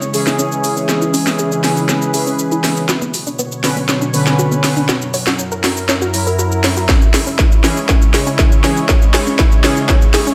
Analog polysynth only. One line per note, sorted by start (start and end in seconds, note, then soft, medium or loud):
0.14 1.61 E3 loud
0.14 1.61 C#4 medium
0.14 1.61 G#4 loud
1.64 2.11 E3 medium
1.64 2.11 C#4 medium
1.64 2.11 G#4 medium
2.14 2.87 E3 medium
2.14 2.87 C#4 medium
2.14 2.87 G#4 medium
3.64 3.78 D3 medium
3.64 3.78 C#4 medium
3.64 3.78 B4 medium
4.14 4.87 D3 loud
4.14 4.87 C#4 medium
4.14 4.87 B4 loud
6.14 6.87 F#3 medium
6.14 6.87 E4 medium
6.14 6.87 A#4 medium
7.64 7.78 E3 medium
7.64 7.78 C#4 medium
7.64 7.78 G#4 medium
8.64 8.78 E3 medium
8.64 8.78 C#4 medium
8.64 8.78 G#4 medium
9.64 9.78 E3 medium
9.64 9.78 C#4 medium
9.64 9.78 G#4 medium